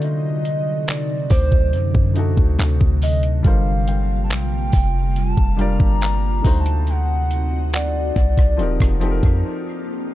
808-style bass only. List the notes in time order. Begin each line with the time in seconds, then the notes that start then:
Already playing: D3
1.30 D2
1.73 F#2
1.95 F#2
2.37 D2
2.59 D2
2.81 D2
3.45 G1
4.30 A#1
4.73 F1
5.37 F1
5.80 G1
6.44 D2
8.16 C2
8.59 D#1
8.80 F1
9.23 F2